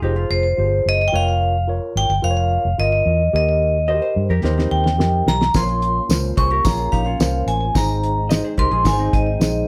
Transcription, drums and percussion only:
4.45 snare medium
4.59 snare soft
4.86 snare medium
5.00 snare medium
5.28 snare loud
5.42 snare medium
5.54 kick loud
5.54 snare loud
5.54 closed hi-hat medium
5.54 tambourine medium
5.82 closed hi-hat medium
6.10 snare loud
6.10 closed hi-hat medium
6.10 tambourine medium
6.37 kick loud
6.37 closed hi-hat medium
6.65 kick medium
6.65 snare loud
6.65 closed hi-hat loud
6.65 tambourine medium
6.93 kick medium
6.93 closed hi-hat medium
7.20 snare loud
7.20 closed hi-hat medium
7.20 tambourine medium
7.48 closed hi-hat medium
7.75 kick loud
7.75 snare medium
7.75 closed hi-hat medium
7.75 tambourine medium
8.03 closed hi-hat medium
8.30 snare loud
8.30 closed hi-hat medium
8.30 tambourine medium
8.58 kick medium
8.58 closed hi-hat medium
8.85 kick medium
8.85 snare loud
8.85 closed hi-hat medium
8.85 tambourine medium
9.13 kick medium
9.13 closed hi-hat medium
9.41 snare loud
9.41 closed hi-hat medium
9.41 tambourine medium

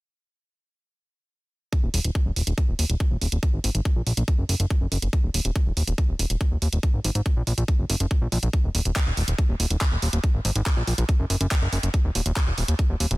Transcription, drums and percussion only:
1.73 kick loud
1.73 closed hi-hat medium
1.94 open hi-hat loud
2.04 closed hi-hat medium
2.15 kick loud
2.15 closed hi-hat medium
2.36 open hi-hat medium
2.47 closed hi-hat medium
2.58 kick loud
2.58 closed hi-hat medium
2.79 open hi-hat loud
2.90 closed hi-hat medium
3.00 kick loud
3.00 closed hi-hat medium
3.21 open hi-hat medium
3.32 closed hi-hat medium
3.43 kick loud
3.43 closed hi-hat medium
3.64 open hi-hat loud
3.75 closed hi-hat medium
3.85 kick loud
3.85 closed hi-hat medium
4.07 open hi-hat medium
4.17 closed hi-hat medium
4.28 kick loud
4.28 closed hi-hat medium
4.49 open hi-hat loud
4.60 closed hi-hat medium
4.70 kick loud
4.70 closed hi-hat medium
4.92 open hi-hat loud
5.02 closed hi-hat medium
5.13 kick loud
5.13 closed hi-hat medium
5.34 open hi-hat loud
5.45 closed hi-hat medium
5.56 kick loud
5.56 closed hi-hat medium
5.77 open hi-hat medium
5.87 closed hi-hat medium
5.98 kick loud
5.98 closed hi-hat medium
6.19 open hi-hat loud
6.30 closed hi-hat medium
6.41 kick loud
6.41 closed hi-hat medium
6.62 open hi-hat loud
6.73 closed hi-hat medium
6.83 kick loud
6.83 closed hi-hat medium
7.04 open hi-hat loud
7.15 closed hi-hat medium
7.26 kick loud
7.26 closed hi-hat medium
7.47 open hi-hat medium
7.58 closed hi-hat medium
7.68 kick loud
7.68 closed hi-hat medium
7.90 open hi-hat loud
8.00 closed hi-hat medium
8.11 kick loud
8.11 closed hi-hat medium
8.32 open hi-hat medium
8.43 closed hi-hat medium
8.53 kick loud
8.53 closed hi-hat medium
8.75 open hi-hat loud
8.85 closed hi-hat medium
8.96 kick loud
8.96 clap loud
8.96 closed hi-hat medium
9.17 open hi-hat medium
9.28 closed hi-hat medium
9.38 kick loud
9.38 closed hi-hat medium
9.60 open hi-hat loud
9.70 closed hi-hat medium
9.81 kick loud
9.81 clap loud
9.81 closed hi-hat medium
10.02 open hi-hat medium
10.13 closed hi-hat medium
10.24 kick loud
10.24 closed hi-hat medium
10.45 open hi-hat loud
10.56 closed hi-hat medium
10.66 kick loud
10.66 clap loud
10.66 closed hi-hat medium
10.87 open hi-hat medium
10.98 closed hi-hat medium
11.09 kick loud
11.09 closed hi-hat medium
11.30 open hi-hat loud
11.41 closed hi-hat medium
11.51 kick loud
11.51 clap loud
11.51 closed hi-hat medium
11.73 open hi-hat medium
11.83 closed hi-hat medium
11.94 kick loud
11.94 closed hi-hat medium
12.15 open hi-hat loud
12.26 closed hi-hat medium
12.36 kick loud
12.36 clap loud
12.36 closed hi-hat medium
12.58 open hi-hat medium
12.68 closed hi-hat medium
12.79 kick loud
12.79 closed hi-hat medium
13.00 open hi-hat loud
13.11 closed hi-hat medium

